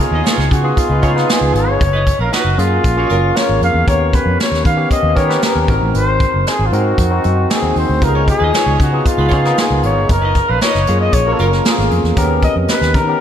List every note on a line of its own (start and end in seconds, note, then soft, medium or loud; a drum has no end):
0.00 0.39 B3 medium
0.00 0.39 D#4 medium
0.00 0.40 F4 medium
0.00 0.40 G#4 medium
0.00 0.54 G#4 medium
0.11 0.21 D#2 medium
0.11 0.22 D#4 medium
0.11 0.22 B4 medium
0.11 0.23 D#5 medium
0.24 0.45 G#3 medium
0.24 0.45 F4 medium
0.24 0.45 C#5 loud
0.24 snare medium
0.24 closed hi-hat medium
0.38 0.48 C#2 medium
0.38 snare soft
0.51 0.71 C#3 medium
0.51 0.79 F#4 medium
0.51 kick medium
0.51 closed hi-hat medium
0.63 0.92 B3 medium
0.63 0.92 D#4 medium
0.63 0.92 F4 medium
0.63 0.93 G#4 medium
0.77 1.31 F4 medium
0.77 kick medium
0.77 closed hi-hat medium
0.89 0.99 C#2 medium
0.89 1.00 G#3 medium
0.89 1.00 F4 medium
0.89 1.00 B4 medium
1.02 1.22 C#3 medium
1.02 1.11 G#3 medium
1.02 1.12 B3 medium
1.02 1.12 D#4 medium
1.02 1.10 F4 medium
1.02 1.12 F4 medium
1.02 1.13 G#4 medium
1.02 1.10 C#5 medium
1.02 kick medium
1.02 closed hi-hat medium
1.16 1.80 B3 medium
1.16 1.80 D#4 medium
1.16 1.80 F4 medium
1.16 1.81 B4 medium
1.16 snare soft
1.29 1.56 G#4 medium
1.29 snare loud
1.29 closed hi-hat medium
1.41 1.51 C#2 medium
1.54 1.67 G#1 medium
1.54 2.19 C#5 medium
1.54 closed hi-hat medium
1.67 1.77 G1 medium
1.81 2.10 F#1 loud
1.81 kick loud
1.81 closed hi-hat medium
1.93 2.04 D#4 medium
1.93 2.04 B4 medium
1.93 2.04 D#5 medium
2.07 kick medium
2.07 closed hi-hat medium
2.19 2.29 A#1 medium
2.19 2.30 C#4 medium
2.19 2.34 A#4 medium
2.19 2.30 A#4 medium
2.19 2.30 F5 medium
2.32 2.53 D#4 medium
2.32 2.61 F#4 medium
2.32 2.53 B4 medium
2.32 2.53 D#5 medium
2.32 snare medium
2.32 closed hi-hat medium
2.45 2.55 F#1 medium
2.58 2.78 F#2 medium
2.58 2.87 A#3 medium
2.58 2.86 C#4 medium
2.58 2.87 F4 medium
2.58 3.38 F4 medium
2.58 2.87 G#4 medium
2.58 closed hi-hat medium
2.84 3.04 A#1 medium
2.84 kick medium
2.84 closed hi-hat medium
2.96 3.25 A#3 medium
2.96 3.07 A#3 medium
2.96 3.25 C#4 medium
2.96 3.26 F4 medium
2.96 3.07 F#4 medium
2.96 3.26 G#4 medium
2.96 3.07 C#5 medium
3.10 3.30 F#1 medium
3.10 3.18 F#3 medium
3.10 3.18 F4 medium
3.10 3.18 A#4 medium
3.10 closed hi-hat medium
3.35 3.74 A#3 medium
3.35 3.74 C#4 medium
3.35 3.74 F4 medium
3.35 3.74 A#4 medium
3.35 3.62 C#5 medium
3.35 snare loud
3.35 closed hi-hat medium
3.49 3.59 G#1 medium
3.61 3.71 F2 medium
3.61 3.87 F5 medium
3.61 closed hi-hat medium
3.74 3.84 E2 medium
3.87 4.17 D#2 medium
3.87 4.54 B3 medium
3.87 4.54 C#4 medium
3.87 4.54 G4 medium
3.87 4.55 A#4 medium
3.87 4.16 C#5 loud
3.87 kick loud
3.87 closed hi-hat medium
4.13 4.40 B4 medium
4.13 kick medium
4.13 closed hi-hat medium
4.26 4.36 F2 medium
4.40 4.65 C#5 loud
4.40 snare medium
4.40 closed hi-hat medium
4.52 4.62 D#2 medium
4.52 snare soft
4.65 4.85 D#3 loud
4.65 4.90 F5 medium
4.65 kick medium
4.65 closed hi-hat medium
4.77 5.06 B3 medium
4.77 5.06 C#4 medium
4.77 5.06 G4 medium
4.77 5.07 C#5 medium
4.91 5.18 D#5 medium
4.91 kick medium
4.91 closed hi-hat medium
5.03 5.13 D#2 medium
5.15 5.36 D#3 medium
5.15 5.26 B3 medium
5.15 5.26 C#4 medium
5.15 5.26 G4 medium
5.15 5.26 A#4 medium
5.15 5.43 C#5 medium
5.15 kick medium
5.15 closed hi-hat medium
5.29 5.68 B3 medium
5.29 5.68 C#4 medium
5.29 5.69 G4 medium
5.29 5.69 B4 medium
5.29 snare soft
5.42 5.67 A#4 medium
5.42 snare loud
5.42 closed hi-hat medium
5.55 5.66 D#2 medium
5.68 5.78 G#1 medium
5.68 6.52 C4 medium
5.68 6.52 D#4 medium
5.68 6.52 F#4 medium
5.68 6.52 A#4 medium
5.68 kick loud
5.68 closed hi-hat medium
5.81 5.91 A1 medium
5.94 6.25 G#1 loud
5.94 6.50 C5 medium
5.94 closed hi-hat medium
6.20 kick medium
6.20 closed hi-hat medium
6.34 6.44 F#1 medium
6.47 6.68 G#4 medium
6.47 snare medium
6.47 closed hi-hat medium
6.59 6.69 G#1 medium
6.66 6.76 F4 medium
6.72 6.92 G#2 medium
6.72 7.01 C4 medium
6.72 7.01 D#4 medium
6.72 7.01 F#4 medium
6.72 7.53 F#4 medium
6.72 7.01 A#4 medium
6.72 closed hi-hat medium
6.98 7.18 F2 medium
6.98 kick medium
6.98 closed hi-hat medium
7.10 7.40 C4 medium
7.10 7.40 D#4 medium
7.10 7.40 F#4 medium
7.10 7.40 C5 medium
7.24 7.45 F#2 medium
7.24 closed hi-hat medium
7.50 7.88 C4 medium
7.50 7.89 D#4 medium
7.50 7.88 F#4 medium
7.50 7.89 G#4 medium
7.50 7.77 G#4 medium
7.50 snare loud
7.50 closed hi-hat medium
7.62 7.73 D#2 medium
7.76 7.86 D#2 medium
7.76 8.05 C5 medium
7.76 open hi-hat medium
7.89 7.99 D2 medium
8.01 8.32 C#2 medium
8.01 8.68 B3 medium
8.01 8.69 D#4 medium
8.01 8.69 F4 medium
8.01 8.08 G4 medium
8.01 8.29 A#4 medium
8.01 kick loud
8.01 closed hi-hat medium
8.08 8.72 G#4 medium
8.13 8.24 G#3 medium
8.13 8.24 F4 medium
8.13 8.25 C#5 medium
8.28 8.77 G#4 medium
8.28 kick medium
8.28 closed hi-hat medium
8.40 8.51 D#2 medium
8.40 8.51 D#4 medium
8.40 8.51 B4 medium
8.40 8.51 D#5 medium
8.53 8.74 G#3 medium
8.53 8.74 F4 medium
8.53 8.74 C#5 loud
8.53 snare medium
8.53 closed hi-hat medium
8.66 8.76 C#2 medium
8.80 9.00 C#3 medium
8.80 9.08 F#4 medium
8.80 kick medium
8.80 closed hi-hat medium
8.92 9.21 B3 medium
8.92 9.21 D#4 medium
8.92 9.22 F4 medium
8.92 9.22 G#4 medium
9.06 9.61 F4 medium
9.06 kick medium
9.06 closed hi-hat medium
9.18 9.28 C#2 medium
9.18 9.28 G#3 medium
9.18 9.28 F4 medium
9.18 9.29 B4 medium
9.29 9.51 C#3 medium
9.29 9.38 G#3 medium
9.29 9.41 B3 medium
9.29 9.42 D#4 medium
9.29 9.37 F4 medium
9.29 9.42 F4 medium
9.29 9.38 C#5 medium
9.29 kick medium
9.29 closed hi-hat medium
9.33 9.42 G#4 medium
9.45 10.10 B3 medium
9.45 10.10 D#4 medium
9.45 10.10 F4 medium
9.45 10.10 A#4 medium
9.45 snare soft
9.57 9.84 G#4 medium
9.57 snare loud
9.57 closed hi-hat medium
9.71 9.80 C#2 medium
9.83 9.96 G#1 medium
9.83 10.13 C#5 medium
9.83 closed hi-hat medium
9.96 10.06 G1 medium
10.09 10.39 F#1 loud
10.09 10.51 A#4 medium
10.09 kick loud
10.09 closed hi-hat medium
10.22 10.33 D#4 medium
10.22 10.32 B4 medium
10.22 10.33 D#5 medium
10.35 kick medium
10.35 closed hi-hat medium
10.48 10.59 A#1 medium
10.48 10.58 C#4 medium
10.48 10.58 A#4 medium
10.48 10.61 B4 medium
10.48 10.58 F5 medium
10.61 10.82 D#4 medium
10.61 10.82 B4 medium
10.61 10.98 C#5 medium
10.61 10.82 D#5 loud
10.61 snare medium
10.61 closed hi-hat medium
10.74 10.85 F#1 medium
10.74 snare soft
10.87 11.08 F#2 medium
10.87 11.16 A#3 medium
10.87 11.16 C#4 medium
10.87 11.17 F4 medium
10.87 11.17 G#4 medium
10.87 closed hi-hat medium
11.01 11.15 D#5 medium
11.13 11.33 A#1 medium
11.13 11.34 C#5 medium
11.13 kick medium
11.13 closed hi-hat medium
11.27 11.55 A#3 medium
11.27 11.37 A#3 medium
11.27 11.55 C#4 medium
11.27 11.55 F4 medium
11.27 11.37 F#4 medium
11.27 11.55 A#4 medium
11.27 11.37 C#5 medium
11.33 11.42 A4 medium
11.39 11.59 F#1 medium
11.39 11.47 F#3 medium
11.39 11.48 F4 medium
11.39 11.47 A#4 medium
11.39 11.91 A#4 medium
11.39 closed hi-hat medium
11.53 snare soft
11.65 11.71 A3 medium
11.65 12.03 C#4 medium
11.65 12.04 F4 medium
11.65 12.04 G#4 medium
11.65 snare loud
11.65 closed hi-hat medium
11.71 12.06 A#3 medium
11.78 11.88 G#1 medium
11.78 snare soft
11.91 12.01 F2 medium
11.91 closed hi-hat medium
12.04 12.14 E2 medium
12.04 snare soft
12.17 12.47 D#2 medium
12.17 12.84 B3 medium
12.17 12.84 C#4 medium
12.17 12.84 G4 medium
12.17 12.84 A#4 medium
12.17 kick loud
12.17 closed hi-hat medium
12.42 12.55 D#5 medium
12.42 kick medium
12.42 closed hi-hat medium
12.56 12.66 F2 medium
12.68 12.96 B4 medium
12.68 snare medium
12.68 closed hi-hat medium
12.81 12.96 D#2 medium
12.81 snare soft
12.94 13.14 D#3 medium
12.94 13.21 A#4 medium
12.94 kick medium
12.94 closed hi-hat medium
13.07 13.21 B3 medium
13.07 13.21 C#4 medium
13.07 13.21 G4 medium
13.07 13.21 A#4 medium